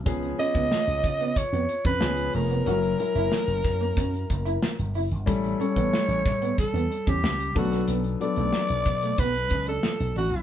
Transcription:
0.06 C#2 F3 B3 C#4 G#4, kick, closed hi-hat
0.22 muted clean electric guitar stroke, closed hi-hat
0.38 F3 B3 C#4 G#4 D#5, closed hi-hat
0.55 C#2 B3, kick, closed hi-hat
0.71 A3, snare
0.87 C#2, closed hi-hat
1.04 C#3, muted clean electric guitar stroke, kick, closed hi-hat
1.20 B3, closed hi-hat
1.36 C#5, kick, closed hi-hat
1.53 F2 B3, closed hi-hat
1.69 muted clean electric guitar stroke, closed hi-hat
1.84 F2 C#4 B4, kick, closed hi-hat
2.00 C#2 F3 B3 C#4 G#4, muted clean electric guitar stroke, snare
2.17 closed hi-hat
2.33 F1 A3 A#4, open hi-hat
2.50 B3, closed hi-hat
2.66 F#1 F#3 C#4 E4 F#4 A#4, closed hi-hat
2.83 closed hi-hat
2.98 F#3 C#4 E4 A#4, muted clean electric guitar stroke, closed hi-hat
3.15 F#1 E4, closed hi-hat
3.32 A3, snare
3.47 F#1, closed hi-hat
3.64 F#2, muted clean electric guitar stroke, kick, snare, closed hi-hat
3.81 A#3, closed hi-hat
3.97 F#2 C#4, kick, closed hi-hat
4.14 closed hi-hat
4.30 F#1, muted clean electric guitar stroke, kick, closed hi-hat
4.45 E4, closed hi-hat
4.63 snare
4.79 G1, closed hi-hat
4.94 F#1 E4, open hi-hat
5.11 G1, closed hi-hat
5.26 A1 G3 C#4 E4 A4, kick, closed hi-hat
5.44 muted clean electric guitar stroke, closed hi-hat
5.59 G3 C#4 E4 A4 C#5, closed hi-hat
5.76 A1 B3, kick, closed hi-hat
5.93 A3, snare
6.08 A1, closed hi-hat
6.25 A2, muted clean electric guitar stroke, kick, snare, closed hi-hat
6.42 B3, closed hi-hat
6.58 A4, kick, closed hi-hat
6.74 E2 B3, closed hi-hat
6.91 muted clean electric guitar stroke, closed hi-hat
7.07 E2 C#4 G4, kick, closed hi-hat
7.23 C#2, muted clean electric guitar stroke, snare
7.40 closed hi-hat
7.55 B1 F#3 A3 B3 D4 F#4 A4, kick, open hi-hat
7.72 B3, snare, closed hi-hat
7.88 B1 B3, closed hi-hat
8.04 closed hi-hat
8.20 F#3 B3 D4 A4 D5, muted clean electric guitar stroke, closed hi-hat
8.36 B1 A3, closed hi-hat
8.53 F#3, snare
8.68 B1, closed hi-hat
8.85 B2, muted clean electric guitar stroke, kick, closed hi-hat
9.02 A3, closed hi-hat
9.18 B1 B3 B4, kick, closed hi-hat
9.34 closed hi-hat
9.50 C#2, muted clean electric guitar stroke, kick, closed hi-hat
9.67 D4 A4, closed hi-hat
9.83 snare
10.00 B1, closed hi-hat
10.16 A1 D4 F#4, open hi-hat
10.32 B1, closed hi-hat

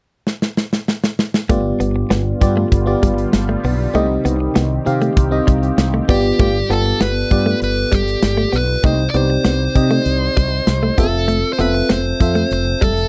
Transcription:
0.27 snare
0.42 snare
0.57 snare
0.73 snare
0.88 snare
1.04 snare
1.19 snare
1.34 snare
1.49 G1 G2 D3 G3 A3 B3 F4 G4 D5, kick, closed hi-hat
1.80 G1 B3, closed hi-hat
1.96 muted clean electric guitar stroke
2.10 G1 B3, snare, closed hi-hat
2.41 G2 B3 F4 G4 D5, muted clean electric guitar stroke, kick, closed hi-hat
2.57 A3
2.72 G1, kick, closed hi-hat
2.86 B3 F4 G4 D5
3.03 G1 G3, kick, closed hi-hat
3.18 closed hi-hat
3.33 G1, muted clean electric guitar stroke, snare, closed hi-hat
3.49 A3
3.64 B1 B3, open hi-hat
3.94 C2 C3 D#3 A3 C4 D#4 G4 D#5, closed hi-hat
4.25 C2 B3, closed hi-hat
4.40 muted clean electric guitar stroke
4.55 C2 B3, snare, closed hi-hat
4.86 C3 C4 D#4 G4 F5, muted clean electric guitar stroke, closed hi-hat
5.01 A3, closed hi-hat
5.17 C2, kick, closed hi-hat
5.31 C4 D#4 G4 D#5
5.47 C2 G3, kick, closed hi-hat
5.63 closed hi-hat
5.78 C2, muted clean electric guitar stroke, snare, closed hi-hat
5.94 A3
6.08 G1 D3 B3 F4 G4 D5, kick, open hi-hat
6.39 G1 G2 A3 B3 F4 G4 D5, kick, closed hi-hat
6.69 G1 B3 F4 G4 A4, closed hi-hat
6.86 muted clean electric guitar stroke
7.00 G1 B3 B4, snare, closed hi-hat
7.31 G2 B3 F4 G4 D5, muted clean electric guitar stroke, kick, closed hi-hat
7.46 A3
7.62 G1 B4, closed hi-hat
7.92 G1 G3 G4, kick, closed hi-hat
8.08 closed hi-hat
8.22 G1, muted clean electric guitar stroke, snare, closed hi-hat
8.37 A3
8.53 B1 B3 B4, closed hi-hat
8.83 C2 C3 A3 C4 D#4 G4 C5 D#5, kick, closed hi-hat
9.09 D5
9.14 C2 B3 C4 D#4 G4 C5 D5, closed hi-hat
9.30 muted clean electric guitar stroke
9.45 C2 B3, snare, closed hi-hat
9.75 C3 C4 D#4 G4 D#5, muted clean electric guitar stroke, kick, closed hi-hat
9.91 A3, closed hi-hat
10.06 C2, closed hi-hat
10.37 C2 G3, kick, closed hi-hat
10.67 C2, muted clean electric guitar stroke, snare, closed hi-hat
10.83 A3
10.98 F1 B3 C4 F4 A4 E5, kick, closed hi-hat
11.28 A3, closed hi-hat
11.53 C5
11.59 F1 B3 C4 F4 A4 B4 E5, closed hi-hat
11.74 muted clean electric guitar stroke
11.89 F1 B3 C5, snare, closed hi-hat
12.20 F2 C4 F4 A4 E5, muted clean electric guitar stroke, kick, closed hi-hat
12.35 A3, closed hi-hat
12.51 F1 C5, closed hi-hat
12.81 F1 G3 A4, kick, closed hi-hat
12.97 closed hi-hat

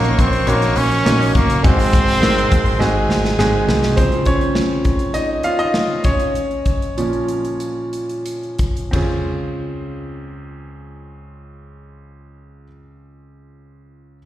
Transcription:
Already playing: A#1 A#2 A#3 C#4 D#4 F#4 A#4 C#5 C#6
0.04 hi-hat pedal
0.18 A#1 C4, kick, hi-hat pedal, open hi-hat
0.33 open hi-hat
0.46 A#1 A#3 C#4 D#4 F#4 C#5, hi-hat pedal, open hi-hat
0.62 snare, hi-hat pedal
0.76 A#1 C#4, hi-hat pedal, open hi-hat
0.92 open hi-hat
1.05 A#1 A#3 C#4 D#4 F#4 C#5, snare, hi-hat pedal, open hi-hat
1.21 hi-hat pedal, open hi-hat
1.35 F#1 A#3, kick, hi-hat pedal, open hi-hat
1.50 hi-hat pedal, open hi-hat
1.63 G#1 G#2 G#3 C4 D#4 F#4 G#4 C5 C6, kick, hi-hat pedal, open hi-hat
1.79 hi-hat pedal, open hi-hat
1.93 kick, hi-hat pedal, open hi-hat
2.08 G#1, hi-hat pedal, open hi-hat
2.20 G#1 G#3 C4 D#4 F#4 A#4, snare, hi-hat pedal, open hi-hat
2.38 hi-hat pedal
2.51 G#1, kick, hi-hat pedal, open hi-hat
2.66 open hi-hat
2.79 G#1 G#3 C4 D#4 F#4 G#4 G#5, snare
3.10 G#1, snare
3.25 snare
3.39 G#1 G#3 C4 D#4 F#4 G#4, snare
3.68 C2, snare
3.83 snare
3.96 C#3 F3 C4 C5, kick, closed hi-hat
4.12 closed hi-hat
4.25 C#4 C#5, kick, closed hi-hat
4.41 closed hi-hat
4.55 snare
4.85 kick, closed hi-hat
4.99 closed hi-hat
5.14 D#4 D#5, closed hi-hat
5.43 F4 F5, closed hi-hat
5.59 D#4 D#5, closed hi-hat
5.74 snare
6.04 C#4 C#5, kick, closed hi-hat
6.20 closed hi-hat
6.35 closed hi-hat
6.51 closed hi-hat
6.65 kick, closed hi-hat
6.82 closed hi-hat
6.97 A#2 F3 C#4, closed hi-hat
7.13 closed hi-hat
7.28 closed hi-hat
7.45 closed hi-hat
7.60 closed hi-hat
7.93 closed hi-hat
8.09 closed hi-hat
8.26 closed hi-hat
8.43 closed hi-hat
8.59 kick, closed hi-hat
8.77 closed hi-hat
8.91 C#2 C4 C#4 F4, kick, floor tom, crash
8.96 G#4

